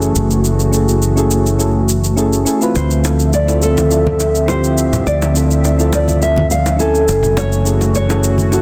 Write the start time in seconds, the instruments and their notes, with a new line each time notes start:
Already playing: fretless electric bass F#1, analog synth pad E3 A3 F#4, synth keys C#4 E4 G#4 A4
0.02 shaker
0.16 fretless electric bass F#1, shaker
0.31 shaker
0.45 shaker
0.60 shaker
0.72 synth keys C#4 E4 G#4 A4, shaker
0.89 shaker
1.02 shaker
1.16 synth keys C#4 E4 G#4 A4, shaker
1.31 shaker
1.46 shaker
1.58 synth keys C#4 E4 G#4 A4, shaker
1.89 shaker
2.04 shaker
2.16 synth keys C#4 E4 G#4 A4, shaker
2.33 shaker
2.45 synth keys C#4 E4 G#4 A4, shaker
2.61 synth keys C4 E4 F4 B4, shaker
2.75 fretless electric bass D2, analog synth pad D3 F3 C4 E5, nylon-string guitar C5, high bongo, shaker
2.91 shaker
3.03 synth keys C4 E4 F4 A4, high bongo, shaker
3.20 shaker
3.33 nylon-string guitar D5, shaker
3.47 synth keys C4 E4 F4 A4, high bongo, shaker
3.62 nylon-string guitar A4, shaker
3.77 high bongo, high conga, shaker
3.90 synth keys C4 E4 F4 A4, shaker
4.07 high conga
4.20 high bongo, shaker
4.35 shaker
4.46 synth keys C4 E4 F4, nylon-string guitar C5, high bongo, shaker
4.51 synth keys G4
4.64 shaker
4.78 shaker
4.93 high bongo, low conga, shaker
5.06 fretless electric bass D2, nylon-string guitar D5, shaker
5.22 high bongo, shaker
5.34 synth keys C4 E4 F4 A4, shaker
5.51 shaker
5.64 high bongo, shaker
5.78 synth keys C4 E4 F4 A4, shaker
5.93 nylon-string guitar D5, high bongo, shaker
6.08 high conga, shaker
6.20 synth keys C4 E4 F4 A4, nylon-string guitar E5, shaker
6.36 high bongo, high conga
6.51 nylon-string guitar F5, shaker
6.66 high bongo, shaker
6.77 synth keys C#4 E4 G#5, nylon-string guitar A4, shaker
6.82 synth keys A4
6.95 shaker
7.08 fretless electric bass F#1, analog synth pad E3 A3 F#4, high bongo, shaker
7.23 low conga, shaker
7.37 nylon-string guitar C#5, high bongo, shaker
7.52 shaker
7.65 synth keys C#4 E4 G#4 A4, shaker
7.81 high bongo, shaker
7.95 nylon-string guitar C#5, shaker
8.08 synth keys C#4 E4 G#4 A4, high bongo, shaker
8.24 shaker
8.38 high conga, shaker
8.51 synth keys C#4 E4 G#4 A4, nylon-string guitar F#4, high bongo, shaker